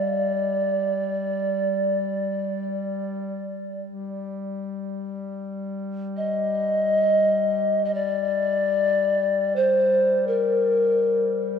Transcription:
0, 0, Header, 1, 3, 480
1, 0, Start_track
1, 0, Key_signature, -2, "minor"
1, 0, Tempo, 500000
1, 11127, End_track
2, 0, Start_track
2, 0, Title_t, "Pan flute"
2, 0, Program_c, 0, 75
2, 0, Note_on_c, 0, 74, 70
2, 3662, Note_off_c, 0, 74, 0
2, 5921, Note_on_c, 0, 75, 84
2, 7535, Note_off_c, 0, 75, 0
2, 7535, Note_on_c, 0, 75, 58
2, 7625, Note_on_c, 0, 74, 90
2, 7639, Note_off_c, 0, 75, 0
2, 9177, Note_on_c, 0, 72, 72
2, 9192, Note_off_c, 0, 74, 0
2, 9864, Note_on_c, 0, 70, 76
2, 9878, Note_off_c, 0, 72, 0
2, 11127, Note_off_c, 0, 70, 0
2, 11127, End_track
3, 0, Start_track
3, 0, Title_t, "Duduk"
3, 0, Program_c, 1, 69
3, 0, Note_on_c, 1, 55, 34
3, 3536, Note_off_c, 1, 55, 0
3, 3699, Note_on_c, 1, 55, 37
3, 11127, Note_off_c, 1, 55, 0
3, 11127, End_track
0, 0, End_of_file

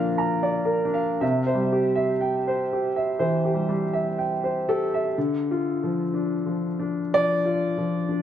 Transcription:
0, 0, Header, 1, 2, 480
1, 0, Start_track
1, 0, Key_signature, -1, "minor"
1, 0, Tempo, 983607
1, 593, Time_signature, 4, 2, 24, 8
1, 3472, Tempo, 947867
1, 4032, End_track
2, 0, Start_track
2, 0, Title_t, "Grand piano"
2, 0, Program_c, 0, 0
2, 0, Control_c, 0, 64, 127
2, 0, Note_on_c, 0, 50, 48
2, 0, Note_on_c, 0, 53, 49
2, 0, Note_on_c, 0, 58, 47
2, 0, Note_on_c, 0, 62, 47
2, 0, Note_on_c, 0, 70, 52
2, 0, Note_on_c, 0, 74, 51
2, 0, Note_on_c, 0, 77, 49
2, 0, Note_on_c, 0, 82, 51
2, 54, Note_off_c, 0, 53, 0
2, 88, Note_off_c, 0, 82, 0
2, 88, Note_on_c, 0, 82, 47
2, 174, Note_off_c, 0, 77, 0
2, 199, Note_off_c, 0, 62, 0
2, 209, Note_off_c, 0, 74, 0
2, 209, Note_on_c, 0, 74, 46
2, 289, Note_off_c, 0, 82, 0
2, 319, Note_off_c, 0, 70, 0
2, 319, Note_on_c, 0, 70, 50
2, 412, Note_off_c, 0, 74, 0
2, 415, Note_on_c, 0, 62, 49
2, 458, Note_on_c, 0, 77, 50
2, 529, Note_off_c, 0, 70, 0
2, 585, Note_off_c, 0, 62, 0
2, 587, Note_off_c, 0, 77, 0
2, 590, Note_on_c, 0, 48, 53
2, 591, Note_on_c, 0, 76, 50
2, 603, Control_c, 0, 64, 0
2, 607, Note_off_c, 0, 50, 0
2, 607, Note_off_c, 0, 58, 0
2, 688, Control_c, 0, 64, 127
2, 714, Note_on_c, 0, 72, 45
2, 753, Note_on_c, 0, 55, 42
2, 789, Note_off_c, 0, 76, 0
2, 841, Note_on_c, 0, 67, 45
2, 912, Note_off_c, 0, 72, 0
2, 954, Note_on_c, 0, 76, 46
2, 1016, Note_off_c, 0, 55, 0
2, 1035, Note_off_c, 0, 67, 0
2, 1077, Note_on_c, 0, 79, 40
2, 1152, Note_off_c, 0, 76, 0
2, 1208, Note_on_c, 0, 72, 46
2, 1273, Note_off_c, 0, 79, 0
2, 1331, Note_on_c, 0, 67, 41
2, 1397, Note_off_c, 0, 72, 0
2, 1445, Note_on_c, 0, 76, 42
2, 1518, Note_off_c, 0, 67, 0
2, 1541, Note_off_c, 0, 48, 0
2, 1558, Note_on_c, 0, 72, 49
2, 1559, Note_on_c, 0, 52, 44
2, 1635, Note_off_c, 0, 76, 0
2, 1682, Note_on_c, 0, 67, 39
2, 1727, Note_on_c, 0, 55, 35
2, 1751, Note_off_c, 0, 72, 0
2, 1792, Note_off_c, 0, 55, 0
2, 1800, Note_on_c, 0, 55, 43
2, 1815, Note_off_c, 0, 52, 0
2, 1873, Note_off_c, 0, 67, 0
2, 1919, Note_on_c, 0, 76, 44
2, 1991, Note_off_c, 0, 55, 0
2, 2041, Note_on_c, 0, 79, 39
2, 2110, Note_off_c, 0, 76, 0
2, 2166, Note_on_c, 0, 72, 40
2, 2232, Note_off_c, 0, 79, 0
2, 2288, Note_on_c, 0, 69, 69
2, 2289, Note_on_c, 0, 67, 44
2, 2355, Note_off_c, 0, 72, 0
2, 2411, Note_on_c, 0, 76, 44
2, 2475, Note_off_c, 0, 67, 0
2, 2524, Note_off_c, 0, 76, 0
2, 2525, Control_c, 0, 64, 0
2, 2527, Note_on_c, 0, 50, 52
2, 2598, Control_c, 0, 64, 127
2, 2690, Note_on_c, 0, 65, 47
2, 2847, Note_on_c, 0, 53, 42
2, 2935, Note_off_c, 0, 65, 0
2, 2995, Note_on_c, 0, 62, 39
2, 3094, Note_off_c, 0, 53, 0
2, 3154, Note_on_c, 0, 53, 40
2, 3250, Note_off_c, 0, 62, 0
2, 3315, Note_on_c, 0, 62, 40
2, 3411, Note_off_c, 0, 53, 0
2, 3459, Note_off_c, 0, 50, 0
2, 3478, Note_off_c, 0, 69, 0
2, 3485, Note_on_c, 0, 74, 88
2, 3488, Note_on_c, 0, 53, 44
2, 3573, Note_off_c, 0, 62, 0
2, 3643, Note_on_c, 0, 65, 42
2, 3739, Note_off_c, 0, 53, 0
2, 3808, Note_on_c, 0, 53, 42
2, 3894, Note_off_c, 0, 65, 0
2, 3964, Note_on_c, 0, 62, 41
2, 4032, Note_off_c, 0, 53, 0
2, 4032, Note_off_c, 0, 62, 0
2, 4032, Note_off_c, 0, 74, 0
2, 4032, End_track
0, 0, End_of_file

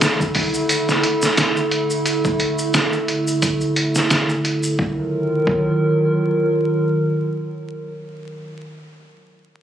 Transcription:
0, 0, Header, 1, 3, 480
1, 0, Start_track
1, 0, Tempo, 681818
1, 1450, Time_signature, 4, 2, 24, 8
1, 6776, End_track
2, 0, Start_track
2, 0, Title_t, "Ambient pad"
2, 0, Program_c, 0, 92
2, 0, Note_on_c, 0, 50, 86
2, 0, Note_on_c, 0, 57, 74
2, 0, Note_on_c, 0, 64, 73
2, 0, Note_on_c, 0, 69, 87
2, 3344, Note_off_c, 0, 50, 0
2, 3344, Note_off_c, 0, 69, 0
2, 3345, Note_off_c, 0, 57, 0
2, 3347, Note_off_c, 0, 64, 0
2, 3366, Note_on_c, 0, 65, 74
2, 3368, Note_on_c, 0, 51, 77
2, 3368, Note_on_c, 0, 54, 73
2, 3370, Note_on_c, 0, 70, 87
2, 5823, Note_off_c, 0, 65, 0
2, 5824, Note_off_c, 0, 51, 0
2, 5824, Note_off_c, 0, 54, 0
2, 5825, Note_off_c, 0, 70, 0
2, 6776, End_track
3, 0, Start_track
3, 0, Title_t, "Drums"
3, 9, Note_on_c, 9, 42, 77
3, 13, Note_on_c, 9, 38, 102
3, 16, Note_on_c, 9, 82, 68
3, 80, Note_off_c, 9, 42, 0
3, 83, Note_off_c, 9, 38, 0
3, 86, Note_off_c, 9, 82, 0
3, 142, Note_on_c, 9, 36, 89
3, 148, Note_on_c, 9, 82, 38
3, 213, Note_off_c, 9, 36, 0
3, 218, Note_off_c, 9, 82, 0
3, 244, Note_on_c, 9, 46, 74
3, 250, Note_on_c, 9, 36, 89
3, 314, Note_off_c, 9, 46, 0
3, 320, Note_off_c, 9, 36, 0
3, 382, Note_on_c, 9, 82, 66
3, 452, Note_off_c, 9, 82, 0
3, 487, Note_on_c, 9, 42, 80
3, 494, Note_on_c, 9, 82, 61
3, 558, Note_off_c, 9, 42, 0
3, 564, Note_off_c, 9, 82, 0
3, 625, Note_on_c, 9, 38, 35
3, 625, Note_on_c, 9, 82, 37
3, 695, Note_off_c, 9, 38, 0
3, 695, Note_off_c, 9, 82, 0
3, 728, Note_on_c, 9, 42, 64
3, 799, Note_off_c, 9, 42, 0
3, 859, Note_on_c, 9, 82, 71
3, 865, Note_on_c, 9, 38, 37
3, 929, Note_off_c, 9, 82, 0
3, 935, Note_off_c, 9, 38, 0
3, 968, Note_on_c, 9, 42, 80
3, 968, Note_on_c, 9, 82, 61
3, 971, Note_on_c, 9, 38, 103
3, 1038, Note_off_c, 9, 42, 0
3, 1039, Note_off_c, 9, 82, 0
3, 1042, Note_off_c, 9, 38, 0
3, 1103, Note_on_c, 9, 82, 39
3, 1173, Note_off_c, 9, 82, 0
3, 1207, Note_on_c, 9, 42, 56
3, 1278, Note_off_c, 9, 42, 0
3, 1341, Note_on_c, 9, 82, 66
3, 1411, Note_off_c, 9, 82, 0
3, 1447, Note_on_c, 9, 42, 72
3, 1452, Note_on_c, 9, 82, 57
3, 1517, Note_off_c, 9, 42, 0
3, 1523, Note_off_c, 9, 82, 0
3, 1582, Note_on_c, 9, 36, 83
3, 1582, Note_on_c, 9, 82, 32
3, 1652, Note_off_c, 9, 36, 0
3, 1652, Note_off_c, 9, 82, 0
3, 1687, Note_on_c, 9, 42, 58
3, 1758, Note_off_c, 9, 42, 0
3, 1820, Note_on_c, 9, 82, 69
3, 1890, Note_off_c, 9, 82, 0
3, 1927, Note_on_c, 9, 82, 59
3, 1929, Note_on_c, 9, 42, 75
3, 1932, Note_on_c, 9, 38, 98
3, 1998, Note_off_c, 9, 82, 0
3, 1999, Note_off_c, 9, 42, 0
3, 2003, Note_off_c, 9, 38, 0
3, 2061, Note_on_c, 9, 82, 33
3, 2131, Note_off_c, 9, 82, 0
3, 2171, Note_on_c, 9, 42, 62
3, 2241, Note_off_c, 9, 42, 0
3, 2306, Note_on_c, 9, 82, 73
3, 2377, Note_off_c, 9, 82, 0
3, 2409, Note_on_c, 9, 82, 57
3, 2410, Note_on_c, 9, 42, 71
3, 2412, Note_on_c, 9, 36, 92
3, 2479, Note_off_c, 9, 82, 0
3, 2480, Note_off_c, 9, 42, 0
3, 2482, Note_off_c, 9, 36, 0
3, 2541, Note_on_c, 9, 82, 35
3, 2612, Note_off_c, 9, 82, 0
3, 2650, Note_on_c, 9, 42, 62
3, 2720, Note_off_c, 9, 42, 0
3, 2781, Note_on_c, 9, 82, 66
3, 2786, Note_on_c, 9, 38, 43
3, 2852, Note_off_c, 9, 82, 0
3, 2857, Note_off_c, 9, 38, 0
3, 2889, Note_on_c, 9, 42, 73
3, 2891, Note_on_c, 9, 82, 59
3, 2892, Note_on_c, 9, 38, 99
3, 2959, Note_off_c, 9, 42, 0
3, 2962, Note_off_c, 9, 82, 0
3, 2963, Note_off_c, 9, 38, 0
3, 3023, Note_on_c, 9, 82, 36
3, 3093, Note_off_c, 9, 82, 0
3, 3131, Note_on_c, 9, 42, 60
3, 3201, Note_off_c, 9, 42, 0
3, 3260, Note_on_c, 9, 82, 69
3, 3331, Note_off_c, 9, 82, 0
3, 3371, Note_on_c, 9, 36, 93
3, 3441, Note_off_c, 9, 36, 0
3, 3852, Note_on_c, 9, 36, 98
3, 3922, Note_off_c, 9, 36, 0
3, 6776, End_track
0, 0, End_of_file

